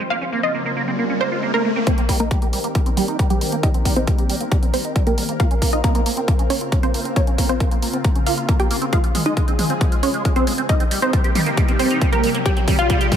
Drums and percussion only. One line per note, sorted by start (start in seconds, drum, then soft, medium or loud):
1.87 kick loud
1.87 closed hi-hat medium
1.98 closed hi-hat medium
2.09 kick medium
2.09 open hi-hat loud
2.20 closed hi-hat medium
2.31 kick loud
2.31 closed hi-hat medium
2.42 closed hi-hat medium
2.53 open hi-hat medium
2.64 closed hi-hat medium
2.75 kick loud
2.75 closed hi-hat medium
2.86 closed hi-hat medium
2.97 open hi-hat loud
3.08 closed hi-hat medium
3.19 kick loud
3.19 closed hi-hat medium
3.30 closed hi-hat medium
3.41 open hi-hat medium
3.52 closed hi-hat medium
3.63 kick loud
3.63 closed hi-hat medium
3.74 closed hi-hat soft
3.85 kick medium
3.85 open hi-hat loud
3.96 closed hi-hat medium
4.07 kick loud
4.07 closed hi-hat medium
4.18 closed hi-hat medium
4.29 open hi-hat loud
4.41 closed hi-hat medium
4.52 kick loud
4.52 closed hi-hat medium
4.63 closed hi-hat soft
4.74 open hi-hat loud
4.85 closed hi-hat medium
4.96 kick loud
4.96 closed hi-hat medium
5.07 closed hi-hat medium
5.18 open hi-hat medium
5.29 closed hi-hat medium
5.40 kick loud
5.40 closed hi-hat medium
5.51 closed hi-hat soft
5.62 kick medium
5.62 open hi-hat loud
5.73 closed hi-hat medium
5.84 kick loud
5.84 closed hi-hat medium
5.95 closed hi-hat soft
6.06 open hi-hat medium
6.17 closed hi-hat medium
6.28 kick loud
6.28 closed hi-hat medium
6.39 closed hi-hat soft
6.50 open hi-hat loud
6.61 closed hi-hat soft
6.72 kick loud
6.72 closed hi-hat medium
6.83 closed hi-hat medium
6.94 open hi-hat medium
7.05 closed hi-hat soft
7.16 kick loud
7.16 closed hi-hat medium
7.27 closed hi-hat soft
7.38 kick medium
7.38 open hi-hat loud
7.49 closed hi-hat soft
7.60 kick loud
7.60 closed hi-hat medium
7.71 closed hi-hat soft
7.82 open hi-hat medium
7.93 closed hi-hat medium
8.04 kick loud
8.04 closed hi-hat medium
8.15 closed hi-hat soft
8.27 open hi-hat loud
8.38 closed hi-hat soft
8.49 kick loud
8.49 closed hi-hat medium
8.60 closed hi-hat medium
8.71 open hi-hat medium
8.82 closed hi-hat medium
8.93 kick loud
8.93 closed hi-hat medium
9.04 closed hi-hat soft
9.15 open hi-hat loud
9.15 mid tom medium
9.26 closed hi-hat soft
9.37 kick loud
9.37 closed hi-hat medium
9.48 closed hi-hat soft
9.59 open hi-hat medium
9.59 mid tom medium
9.70 closed hi-hat soft
9.81 kick loud
9.81 closed hi-hat medium
9.92 closed hi-hat soft
10.03 open hi-hat loud
10.14 closed hi-hat soft
10.25 kick loud
10.25 closed hi-hat medium
10.36 closed hi-hat medium
10.47 open hi-hat medium
10.58 closed hi-hat medium
10.69 kick loud
10.69 closed hi-hat medium
10.80 closed hi-hat medium
10.91 open hi-hat loud
11.02 closed hi-hat medium
11.13 kick loud
11.13 closed hi-hat medium
11.24 closed hi-hat medium
11.35 open hi-hat medium
11.35 mid tom medium
11.46 closed hi-hat medium
11.57 kick loud
11.57 closed hi-hat medium
11.68 closed hi-hat medium
11.79 open hi-hat loud
11.91 closed hi-hat soft
12.02 kick loud
12.02 closed hi-hat medium
12.13 closed hi-hat medium
12.24 open hi-hat medium
12.35 closed hi-hat medium
12.46 kick loud
12.46 closed hi-hat medium
12.57 closed hi-hat medium
12.68 kick loud
12.68 open hi-hat loud
12.68 mid tom medium
12.79 closed hi-hat medium
12.90 kick loud
12.90 closed hi-hat medium
13.01 closed hi-hat medium
13.12 kick loud
13.12 open hi-hat medium
13.12 mid tom medium